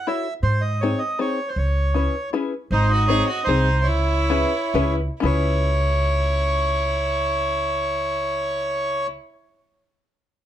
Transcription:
0.07 E4 F#4 A4 C#5 E5
0.43 G#2 C5
0.61 D#5
0.81 C4 D#4 G#4 C5 C#5
0.99 D#5
1.19 C4 D#4 G#4 C5 C#5
1.48 C5
1.56 C#2 C#5
1.94 C#4 E4 G#4 B4
2.33 C#4 E4 G#4 B4
2.71 G#1 D#4 C5
2.90 F#4 D#5
3.08 C4 D#4 G#4 C5 C#5
3.27 F#4 D#5
3.44 C2 D#4 C5
3.49 C4 D#4 G#4 C5
3.84 C#2 E4 C#5
3.88 E4
4.30 C#4 E4 G#4 B4
4.74 C#2 C#4 E4 G#4 B4
5.20 C#2 C#4 E4 G#4
5.25 B4 C#5

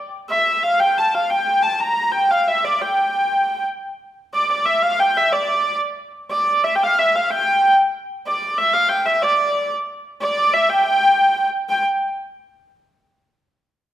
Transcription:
0.30 E5
0.63 F5
0.80 G5
0.98 A5
1.15 F5
1.30 G5
1.63 A5
1.80 A#5
2.12 G5
2.31 F5
2.48 E5
2.64 D5
2.81 G5
4.34 D5
4.50 D5
4.66 E5
4.82 F5
5.00 G5
5.17 E5
5.33 D5
6.31 D5
6.64 E5
6.76 G5
6.83 F5
6.99 E5
7.15 F5
7.31 G5
8.27 D5
8.58 E5
8.73 F5
8.89 G5
9.06 E5
9.23 D5
10.22 D5
10.54 E5
10.70 G5
11.69 G5

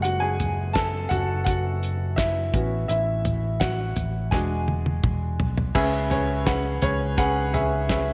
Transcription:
Already playing: F#1 G#3 A3 F#4
0.02 F#4 F#5, closed hi-hat
0.20 G#4 G#5
0.40 closed hi-hat, floor tom
0.73 A4 A5, kick, snare, closed hi-hat
1.09 F#1 F#4 F#5, closed hi-hat, floor tom
1.44 F#4 F#5, kick, closed hi-hat
1.83 closed hi-hat
2.16 E4 E5, kick, snare, closed hi-hat
2.53 A1 B3 C#4 F#4, kick, closed hi-hat
2.88 A1 E4 E5, closed hi-hat
3.25 closed hi-hat, floor tom
3.60 F#4 F#5, kick, snare, closed hi-hat
3.96 A1, closed hi-hat, floor tom
4.31 E1 G#3 D4 F#4 G#4 G#5, kick, snare
4.68 high tom
4.86 high tom
5.04 E1, kick, mid tom
5.40 B1, floor tom
5.58 floor tom
5.75 C#2 C#3 C#4 G#4 B4 E5, kick, crash
5.93 closed hi-hat
6.10 C#4 G#4 B4 C#5, closed hi-hat, floor tom
6.46 C#4 G#4 B4 F#5, kick, snare, closed hi-hat
6.82 C#2 C#4 G#4 B4 C#5, closed hi-hat, floor tom
7.17 C#4 G#4 B4 F#5, kick, closed hi-hat
7.53 C#4 G#4 B4 E5, closed hi-hat, floor tom
7.89 C#4 G#4 B4 E5, kick, snare, closed hi-hat

